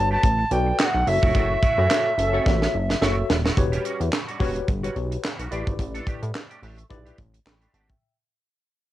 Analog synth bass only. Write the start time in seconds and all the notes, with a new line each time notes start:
Already playing: G1
0.24 A1
0.51 B1
0.95 B1
1.07 F#1
1.23 F1
1.35 F#1
1.78 F#2
2.18 F#1
2.46 A1
2.74 F#1
3.02 F#1
3.30 D#1
3.57 E1
4.01 E2
4.40 E1
4.68 G1
4.96 B1
5.39 B1
5.51 A1
5.67 G#1
5.79 A1
6.23 A2
6.62 A1
6.90 B1
7.18 A1
7.46 A1
7.74 G#1